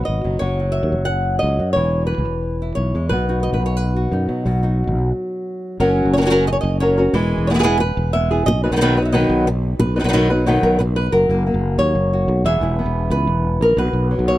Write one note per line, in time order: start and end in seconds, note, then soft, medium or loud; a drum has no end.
0.00 0.40 B2 medium
0.00 0.23 F#3 soft
0.00 0.40 D#4 soft
0.00 0.39 F#4 soft
0.05 0.23 G#1 medium
0.05 0.40 D#5 medium
0.24 0.40 F#1 medium
0.24 0.40 F#3 soft
0.39 0.79 F#1 medium
0.39 1.76 F#3 medium
0.39 1.08 C#5 medium
0.60 1.58 F#4 soft
0.72 1.05 E5 medium
0.83 0.94 D#2 medium
0.92 1.37 F#1 medium
1.05 1.39 F#5 medium
1.39 1.58 C#2 medium
1.39 1.72 D#5 medium
1.59 1.74 F#2 medium
1.59 1.74 F#4 soft
1.73 2.14 E1 medium
1.73 3.09 E3 medium
1.73 2.06 C#5 medium
2.07 2.75 B4 medium
2.18 2.27 C#2 medium
2.27 2.72 E1 medium
2.62 3.10 E4 soft
2.75 2.92 B1 medium
2.75 3.09 C#5 medium
2.94 3.09 E2 medium
2.94 3.10 G#3 soft
3.09 3.48 B1 medium
3.09 4.44 B2 medium
3.09 3.43 B4 medium
3.29 4.12 D#4 soft
3.29 3.95 F#4 soft
3.43 3.53 D#5 medium
3.53 3.61 G#1 medium
3.53 3.65 B4 medium
3.61 4.06 B1 medium
3.66 3.77 C#5 medium
3.77 5.79 B4 medium
3.96 4.44 F#4 soft
4.12 4.27 F#2 medium
4.12 4.44 D#4 soft
4.29 4.44 B2 medium
4.29 5.79 F#3 soft
4.45 4.83 B1 medium
4.45 5.11 B2 medium
4.45 4.63 F#4 soft
4.63 5.11 D#4 soft
4.63 5.11 F#4 soft
4.87 4.96 G#1 medium
4.96 5.11 B1 medium
5.80 6.02 F#1 medium
5.80 6.15 F#3 medium
5.80 6.16 C#4 medium
5.80 6.16 F#4 medium
5.80 6.13 A#4 medium
6.05 6.57 F#1 medium
6.13 6.20 F#3 soft
6.13 6.18 C#5 medium
6.18 6.24 F#3 medium
6.18 6.21 C#4 medium
6.18 6.21 F#4 medium
6.18 6.22 A#4 medium
6.22 6.29 F#3 medium
6.22 6.25 C#4 medium
6.22 6.25 F#4 medium
6.22 6.26 A#4 medium
6.27 6.46 F#3 medium
6.27 6.30 C#4 medium
6.27 6.30 F#4 medium
6.27 6.30 A#4 medium
6.31 6.46 C#4 medium
6.31 6.47 F#4 medium
6.31 6.47 A#4 medium
6.47 6.52 D#5 loud
6.47 muted nylon-string guitar stroke medium
6.53 6.60 C#5 medium
6.61 7.08 F#1 medium
6.61 6.80 D#5 medium
6.80 6.96 F#3 medium
6.80 6.97 C#4 medium
6.80 6.97 F#4 medium
6.80 6.96 A#4 medium
6.80 6.97 C#5 medium
6.98 7.14 C#4 soft
6.98 7.14 F#4 soft
6.98 7.13 A#4 medium
7.13 7.36 E1 medium
7.13 7.62 E3 medium
7.13 7.49 G#3 medium
7.38 7.90 E1 medium
7.47 7.53 G#3 soft
7.47 7.54 B3 medium
7.47 7.54 E4 medium
7.47 7.55 G#4 medium
7.47 7.51 C#5 medium
7.54 7.58 G#3 medium
7.54 7.58 B3 medium
7.54 7.59 E4 medium
7.54 7.59 G#4 medium
7.59 7.62 G#3 medium
7.59 7.63 B3 medium
7.59 7.63 E4 medium
7.59 7.63 G#4 medium
7.63 7.79 E3 medium
7.63 7.79 G#3 medium
7.63 7.79 B3 medium
7.63 7.80 E4 medium
7.63 7.80 G#4 medium
7.80 8.11 B4 medium
7.80 muted nylon-string guitar stroke medium
7.97 8.41 E1 medium
8.13 8.30 G#3 medium
8.13 8.30 B3 medium
8.13 8.48 E5 loud
8.31 8.47 B3 soft
8.31 8.47 E4 soft
8.31 8.46 G#4 medium
8.46 8.69 B1 medium
8.46 8.63 D#5 loud
8.46 muted nylon-string guitar stroke medium
8.64 8.71 F#3 soft
8.64 8.71 B3 medium
8.64 8.71 D#4 soft
8.64 8.72 B4 medium
8.71 9.23 B1 medium
8.71 8.75 D#3 soft
8.71 8.76 F#3 medium
8.71 8.76 B3 medium
8.71 8.76 D#4 medium
8.71 8.76 B4 medium
8.76 8.80 D#3 medium
8.76 8.80 F#3 medium
8.76 8.81 B3 medium
8.76 8.80 D#4 medium
8.76 8.81 B4 medium
8.81 8.97 B2 medium
8.81 8.97 D#3 medium
8.81 8.97 F#3 medium
8.81 8.97 B3 medium
8.81 8.96 D#4 medium
8.81 8.96 B4 loud
8.97 9.13 F#3 soft
8.97 9.13 B3 soft
8.97 9.13 D#4 medium
8.97 9.05 B4 medium
9.05 9.12 E5 medium
9.12 9.46 B2 medium
9.12 9.46 D#3 medium
9.12 9.46 F#3 medium
9.12 9.46 B3 medium
9.12 9.46 D#4 medium
9.12 9.47 B4 loud
9.12 9.48 D#5 medium
9.29 9.74 B1 medium
9.47 muted nylon-string guitar stroke medium
9.79 10.02 B1 medium
9.79 9.95 B4 medium
9.79 muted nylon-string guitar stroke medium
9.96 10.03 D#3 medium
9.96 10.00 F#3 soft
9.96 9.99 B3 medium
9.96 9.99 D#4 soft
9.96 10.00 B4 medium
10.00 10.56 B1 medium
10.00 10.07 D#3 medium
10.00 10.07 F#3 medium
10.00 10.04 D#4 medium
10.00 10.04 B4 medium
10.04 10.08 B3 medium
10.04 10.08 D#4 medium
10.04 10.09 B4 medium
10.09 10.12 D#3 medium
10.09 10.12 F#3 medium
10.09 10.13 B3 medium
10.09 10.13 D#4 medium
10.09 10.13 B4 medium
10.13 10.29 B2 medium
10.13 10.29 D#3 medium
10.13 10.29 F#3 medium
10.13 10.29 B3 medium
10.13 10.29 D#4 medium
10.13 10.29 B4 medium
10.30 10.46 F#3 soft
10.30 10.46 B3 soft
10.30 10.46 D#4 soft
10.30 10.46 B4 medium
10.46 10.79 B2 medium
10.46 10.79 D#3 medium
10.46 10.79 F#3 medium
10.46 10.79 B3 medium
10.46 10.63 D#4 medium
10.46 10.77 B4 medium
10.63 11.07 B1 medium
10.63 10.81 A#4 medium
10.79 10.81 B4 medium
10.79 muted nylon-string guitar stroke medium
10.96 11.13 B4 medium
11.12 11.27 F#1 medium
11.12 12.44 F#3 medium
11.12 12.12 A#4 medium
11.29 11.51 F#1 medium
11.29 11.45 A#3 soft
11.47 12.44 A#3 medium
11.54 11.76 F#1 medium
11.78 11.93 D#2 medium
11.78 12.45 C#5 loud
11.95 12.25 F#1 medium
12.13 12.44 F#4 soft
12.28 12.43 B1 medium
12.45 12.60 E1 medium
12.45 13.76 E3 medium
12.45 12.78 B3 soft
12.45 12.61 E4 soft
12.45 12.62 G#4 soft
12.45 13.45 E5 loud
12.61 12.84 E1 medium
12.61 13.76 E4 soft
12.61 13.11 G#4 soft
12.79 14.10 B3 medium
12.86 13.08 E1 medium
13.10 13.26 C#2 medium
13.10 13.61 B4 medium
13.27 13.57 E1 medium
13.61 13.76 A#1 medium
13.61 13.79 A#4 medium
13.77 13.92 B1 medium
13.77 14.38 B2 medium
13.77 14.28 B4 medium
13.93 14.16 B1 medium
14.11 14.38 F#3 medium
14.19 14.38 B1 medium
14.28 14.38 C#5 medium